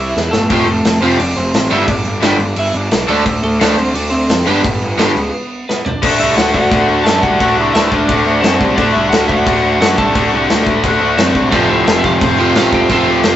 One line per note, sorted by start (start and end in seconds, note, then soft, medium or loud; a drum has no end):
0.00 0.12 C2 medium
0.00 0.31 E4 medium
0.00 0.29 E5 medium
0.16 0.30 E2 medium
0.16 snare medium
0.31 0.47 G1 medium
0.31 0.65 A3 medium
0.31 0.64 A4 medium
0.31 snare medium
0.50 0.64 F1 medium
0.50 0.64 F2 medium
0.50 0.64 C3 medium
0.50 0.65 F3 medium
0.50 0.65 A3 loud
0.50 0.65 C4 medium
0.50 kick loud
0.50 crash medium
0.66 0.81 F1 medium
0.66 1.00 A3 medium
0.66 0.99 A4 medium
0.66 crash medium
0.84 0.99 F1 loud
0.84 snare loud
0.84 crash medium
1.01 1.16 F1 medium
1.01 1.16 F2 medium
1.01 1.16 C3 medium
1.01 1.17 F3 medium
1.01 1.17 A3 medium
1.01 1.18 C4 medium
1.01 1.17 C4 loud
1.01 1.19 C5 medium
1.01 crash medium
1.17 1.33 F1 medium
1.17 1.36 D4 medium
1.17 1.36 D5 medium
1.17 crash medium
1.37 1.51 F1 medium
1.37 1.69 C4 medium
1.37 1.72 C5 loud
1.37 crash medium
1.54 1.68 A1 medium
1.54 snare loud
1.54 crash medium
1.70 1.85 G1 medium
1.70 1.85 G2 medium
1.70 1.85 D3 loud
1.70 1.85 G3 loud
1.70 1.85 B3 medium
1.70 1.86 D4 loud
1.70 1.88 E4 medium
1.70 1.88 E5 loud
1.70 crash medium
1.88 2.02 G1 medium
1.88 2.21 D4 medium
1.88 2.21 D5 loud
1.88 kick loud
1.88 crash medium
2.05 2.19 G1 medium
2.05 crash medium
2.21 2.36 G1 medium
2.21 2.36 G2 loud
2.21 2.36 D3 loud
2.21 2.37 G3 medium
2.21 2.37 B3 medium
2.21 2.55 D4 medium
2.21 2.37 D4 loud
2.21 2.58 D5 loud
2.21 snare loud
2.21 crash medium
2.39 2.53 G1 medium
2.39 crash medium
2.56 2.71 G1 medium
2.56 2.75 E4 medium
2.56 2.74 E5 medium
2.56 crash medium
2.74 2.88 G1 medium
2.74 3.08 D4 medium
2.74 3.09 D5 medium
2.74 crash medium
2.91 3.06 B1 medium
2.91 snare loud
2.91 crash medium
3.07 3.22 D2 medium
3.07 3.22 D3 loud
3.07 3.23 F3 medium
3.07 3.23 A3 loud
3.07 3.42 A3 medium
3.07 3.23 D4 loud
3.07 3.42 A4 medium
3.07 crash medium
3.26 3.40 D2 medium
3.26 kick loud
3.26 crash medium
3.43 3.57 D2 medium
3.43 3.76 A3 medium
3.43 3.79 A4 medium
3.43 crash medium
3.60 3.75 D2 medium
3.60 3.74 D3 medium
3.60 3.75 F3 medium
3.60 3.75 A3 loud
3.60 3.75 D4 loud
3.60 snare loud
3.60 crash medium
3.77 3.91 D2 medium
3.77 3.94 C4 medium
3.77 3.94 C5 medium
3.77 crash medium
3.94 4.09 D2 medium
3.94 4.11 D4 medium
3.94 4.09 D5 medium
3.94 crash medium
4.10 4.26 D2 medium
4.10 4.44 C4 medium
4.10 4.46 C5 loud
4.10 crash medium
4.29 4.44 F2 medium
4.29 snare loud
4.29 crash medium
4.45 4.61 G1 medium
4.45 4.60 G2 loud
4.45 4.60 D3 loud
4.45 4.61 G3 loud
4.45 4.61 B3 loud
4.45 5.64 B3 medium
4.45 4.61 D4 loud
4.45 5.64 B4 medium
4.45 crash medium
4.64 4.78 G1 medium
4.64 kick loud
4.64 crash medium
4.81 4.95 G1 medium
4.81 crash medium
4.98 5.13 G1 loud
4.98 5.12 G2 loud
4.98 5.13 D3 loud
4.98 5.13 G3 loud
4.98 5.13 B3 medium
4.98 5.13 D4 loud
4.98 snare loud
4.98 crash medium
5.16 5.30 C#2 medium
5.16 crash medium
5.69 5.85 B3 medium
5.69 5.85 B4 medium
5.69 snare medium
5.85 6.18 D4 medium
5.85 6.20 D5 loud
5.85 floor tom loud
6.02 6.17 D2 loud
6.02 6.72 D3 medium
6.02 6.73 A3 medium
6.02 6.74 D4 medium
6.02 6.75 F#4 loud
6.02 kick loud
6.02 crash loud
6.02 crash medium
6.20 6.34 C2 medium
6.20 6.36 E4 medium
6.20 6.36 E5 loud
6.37 6.51 D2 loud
6.37 6.54 F#4 medium
6.37 6.52 F#5 loud
6.37 snare loud
6.37 crash medium
6.53 6.68 D2 medium
6.53 7.03 F#4 medium
6.53 7.02 F#5 loud
6.53 kick medium
6.71 6.86 D2 medium
6.71 7.39 D3 medium
6.71 7.40 A3 medium
6.71 7.41 D4 medium
6.71 kick loud
6.71 crash medium
6.76 7.43 F#4 medium
6.88 7.03 D2 loud
7.04 7.20 F#2 loud
7.04 7.22 A4 medium
7.04 7.22 A5 loud
7.04 snare loud
7.04 crash medium
7.21 7.37 C2 loud
7.21 7.39 F#4 medium
7.21 7.39 F#5 loud
7.21 kick medium
7.39 7.55 D2 medium
7.39 8.08 D3 medium
7.39 8.10 A3 loud
7.39 8.11 D4 loud
7.39 8.12 F#4 medium
7.39 7.57 F#5 loud
7.39 kick loud
7.39 crash medium
7.44 7.58 F#4 medium
7.57 7.71 C2 loud
7.57 7.75 E4 medium
7.57 7.73 E5 medium
7.74 7.89 D2 loud
7.74 7.92 E4 medium
7.74 7.90 E5 loud
7.74 snare loud
7.74 crash medium
7.90 8.06 D2 loud
7.90 8.08 D4 medium
7.90 8.07 D5 medium
7.90 kick medium
8.08 8.23 D2 medium
8.08 8.75 D3 medium
8.08 8.77 A3 medium
8.08 8.78 D4 medium
8.08 8.42 D4 medium
8.08 8.40 D5 medium
8.08 kick loud
8.08 crash medium
8.13 8.79 F#4 medium
8.26 8.41 D2 medium
8.41 8.57 F#2 medium
8.41 8.76 C4 medium
8.41 8.74 C5 loud
8.41 snare loud
8.41 crash medium
8.60 8.75 C2 loud
8.60 kick loud
8.76 8.92 D2 loud
8.76 9.45 D3 loud
8.76 9.46 A3 loud
8.76 8.94 D4 medium
8.76 9.48 D4 loud
8.76 8.95 D5 loud
8.76 kick loud
8.76 crash medium
8.80 9.49 F#4 loud
8.92 9.09 C2 medium
8.92 9.11 E4 medium
8.92 9.09 E5 loud
9.09 9.26 D2 loud
9.09 9.27 F#5 loud
9.09 snare loud
9.09 crash medium
9.13 9.29 F#4 medium
9.28 9.44 D2 loud
9.28 9.79 F#4 medium
9.28 9.79 F#5 loud
9.28 kick medium
9.46 9.61 D2 medium
9.46 10.12 D3 medium
9.46 10.15 A3 medium
9.46 10.15 D4 medium
9.46 10.16 F#4 loud
9.46 kick loud
9.46 crash medium
9.63 9.78 D2 loud
9.80 9.95 F#2 loud
9.80 9.98 F#4 medium
9.80 9.98 F#5 loud
9.80 snare loud
9.80 crash medium
9.98 10.12 C2 medium
9.98 10.30 A4 medium
9.98 10.32 A5 medium
9.98 kick loud
10.13 10.30 D2 medium
10.13 10.82 D3 medium
10.13 10.84 A3 medium
10.13 10.83 D4 loud
10.13 10.84 F#4 loud
10.13 kick loud
10.13 crash medium
10.32 10.47 C2 medium
10.50 10.64 D2 medium
10.50 snare loud
10.50 crash medium
10.67 10.81 D2 loud
10.67 kick loud
10.83 10.98 D2 medium
10.83 11.51 D3 medium
10.83 11.52 A3 medium
10.83 11.53 D4 medium
10.83 11.53 F#4 medium
10.83 kick loud
10.83 crash medium
11.01 11.15 D2 loud
11.18 11.32 F#2 medium
11.18 11.51 C4 medium
11.18 11.54 C5 medium
11.18 snare loud
11.18 crash medium
11.35 11.49 C2 medium
11.35 kick medium
11.51 11.67 F1 medium
11.51 12.37 F2 medium
11.51 12.38 C3 medium
11.51 12.20 F3 medium
11.51 12.22 A3 loud
11.51 12.23 C4 loud
11.51 11.68 D4 medium
11.51 12.21 F4 loud
11.51 11.69 D5 loud
11.51 kick loud
11.51 crash medium
11.69 11.84 D2 medium
11.69 11.96 E4 medium
11.69 11.97 E5 medium
11.87 12.01 F1 loud
11.87 snare loud
11.87 crash medium
11.98 12.05 E5 medium
12.04 12.18 F1 loud
12.04 12.53 F4 medium
12.04 12.56 F5 loud
12.04 kick medium
12.21 12.36 F1 medium
12.21 12.87 F3 medium
12.21 12.90 A3 medium
12.21 12.91 C4 loud
12.21 12.91 F4 medium
12.21 kick loud
12.21 crash medium
12.38 12.53 F1 medium
12.38 12.54 F2 medium
12.38 12.55 C3 medium
12.38 12.55 F3 medium
12.55 12.69 A1 medium
12.55 12.88 F2 medium
12.55 12.89 C3 medium
12.55 12.90 F3 medium
12.55 12.63 F4 medium
12.55 12.62 F5 loud
12.55 snare loud
12.55 crash medium
12.73 12.87 D2 loud
12.73 12.90 G4 medium
12.73 12.93 G5 loud
12.73 kick loud
12.89 13.04 F1 medium
12.89 13.36 F2 medium
12.89 13.36 C3 loud
12.89 13.36 F3 loud
12.89 13.36 A3 medium
12.89 13.36 C4 medium
12.89 13.36 F4 loud
12.89 kick loud
12.89 crash medium
12.93 13.08 A4 medium
12.93 13.09 A5 loud
13.07 13.21 D2 medium
13.07 13.36 G4 medium
13.07 13.36 G5 loud
13.23 13.36 F1 loud
13.23 snare loud
13.23 crash medium